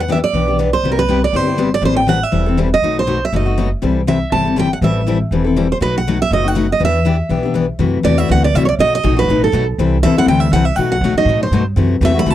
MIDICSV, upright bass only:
0, 0, Header, 1, 3, 480
1, 0, Start_track
1, 0, Tempo, 248550
1, 1614, Time_signature, 4, 2, 24, 8
1, 23843, End_track
2, 0, Start_track
2, 0, Title_t, "Upright bass"
2, 0, Program_c, 0, 32
2, 0, Note_on_c, 0, 40, 72
2, 463, Note_off_c, 0, 40, 0
2, 641, Note_on_c, 0, 35, 69
2, 1415, Note_off_c, 0, 35, 0
2, 1608, Note_on_c, 0, 36, 65
2, 2380, Note_off_c, 0, 36, 0
2, 2564, Note_on_c, 0, 31, 68
2, 3338, Note_off_c, 0, 31, 0
2, 3506, Note_on_c, 0, 33, 76
2, 4288, Note_off_c, 0, 33, 0
2, 4492, Note_on_c, 0, 28, 68
2, 5265, Note_off_c, 0, 28, 0
2, 5452, Note_on_c, 0, 35, 65
2, 6226, Note_off_c, 0, 35, 0
2, 6421, Note_on_c, 0, 30, 68
2, 7191, Note_off_c, 0, 30, 0
2, 7387, Note_on_c, 0, 36, 69
2, 8155, Note_off_c, 0, 36, 0
2, 8342, Note_on_c, 0, 31, 67
2, 9113, Note_off_c, 0, 31, 0
2, 9294, Note_on_c, 0, 33, 74
2, 10068, Note_off_c, 0, 33, 0
2, 10251, Note_on_c, 0, 28, 69
2, 11026, Note_off_c, 0, 28, 0
2, 11218, Note_on_c, 0, 35, 77
2, 11989, Note_off_c, 0, 35, 0
2, 12176, Note_on_c, 0, 30, 71
2, 12948, Note_off_c, 0, 30, 0
2, 13141, Note_on_c, 0, 40, 72
2, 13910, Note_off_c, 0, 40, 0
2, 14082, Note_on_c, 0, 35, 73
2, 14858, Note_off_c, 0, 35, 0
2, 15038, Note_on_c, 0, 42, 73
2, 15515, Note_off_c, 0, 42, 0
2, 15526, Note_on_c, 0, 40, 86
2, 15998, Note_off_c, 0, 40, 0
2, 16023, Note_on_c, 0, 38, 82
2, 16482, Note_off_c, 0, 38, 0
2, 16493, Note_on_c, 0, 36, 80
2, 16956, Note_off_c, 0, 36, 0
2, 16968, Note_on_c, 0, 35, 74
2, 17437, Note_off_c, 0, 35, 0
2, 17460, Note_on_c, 0, 34, 93
2, 17917, Note_off_c, 0, 34, 0
2, 17929, Note_on_c, 0, 33, 85
2, 18392, Note_off_c, 0, 33, 0
2, 18404, Note_on_c, 0, 35, 82
2, 18874, Note_off_c, 0, 35, 0
2, 18893, Note_on_c, 0, 36, 74
2, 19353, Note_off_c, 0, 36, 0
2, 19365, Note_on_c, 0, 40, 80
2, 19808, Note_off_c, 0, 40, 0
2, 19819, Note_on_c, 0, 38, 81
2, 20293, Note_off_c, 0, 38, 0
2, 20304, Note_on_c, 0, 36, 88
2, 20782, Note_off_c, 0, 36, 0
2, 20795, Note_on_c, 0, 35, 80
2, 21247, Note_off_c, 0, 35, 0
2, 21259, Note_on_c, 0, 47, 91
2, 21508, Note_off_c, 0, 47, 0
2, 21731, Note_on_c, 0, 45, 87
2, 22214, Note_off_c, 0, 45, 0
2, 22228, Note_on_c, 0, 43, 77
2, 22703, Note_off_c, 0, 43, 0
2, 22715, Note_on_c, 0, 42, 82
2, 23178, Note_off_c, 0, 42, 0
2, 23190, Note_on_c, 0, 40, 89
2, 23664, Note_off_c, 0, 40, 0
2, 23673, Note_on_c, 0, 38, 83
2, 23843, Note_off_c, 0, 38, 0
2, 23843, End_track
3, 0, Start_track
3, 0, Title_t, "Muted upright bass strokes"
3, 21520, Note_on_c, 9, 29, 41
3, 21713, Note_off_c, 9, 29, 0
3, 23843, End_track
0, 0, End_of_file